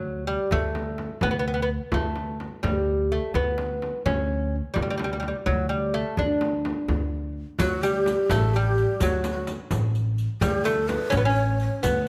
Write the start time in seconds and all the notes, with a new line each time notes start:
Already playing: D2 F#3
0.27 G3
0.51 D2 A3, frame drum
0.75 frame drum
0.98 frame drum
1.21 D2 B3, frame drum
1.31 B3
1.39 B3
1.48 B3
1.54 B3
1.62 B3
1.92 D2 A3, frame drum
2.16 frame drum
2.40 frame drum
2.63 D2 G3, frame drum
3.12 A3
3.34 D2 B3, frame drum
3.58 frame drum
3.82 frame drum
4.06 D2 C#4, frame drum
4.74 D2 G3, frame drum
4.82 G3
4.90 G3
4.98 G3, frame drum
5.04 G3
5.13 G3
5.20 G3, frame drum
5.28 G3
5.46 D2 F#3, frame drum
5.69 G3
5.94 A3
6.17 D2 D4, frame drum
6.41 frame drum
6.65 frame drum
6.88 D2, frame drum
7.59 D2 F#3 F#4, riq, frame drum
7.82 G3 G4, riq
8.06 riq, frame drum
8.30 A1 A3 A4, riq, frame drum
8.54 G3 G4, riq
8.78 riq
9.00 D2 F#3 F#4, riq, frame drum
9.24 riq, frame drum
9.31 F#4
9.47 riq, frame drum
9.71 A1, riq, frame drum
9.95 riq
10.18 riq
10.41 D2 G3 G4, riq, frame drum
10.65 A3 A4, riq, frame drum
10.88 B4, riq, frame drum
11.10 A1 C#4 C#5, riq, frame drum
11.17 B3
11.25 C#4 C#5
11.36 riq
11.60 C#5, riq
11.83 D2 B3 B4, riq, frame drum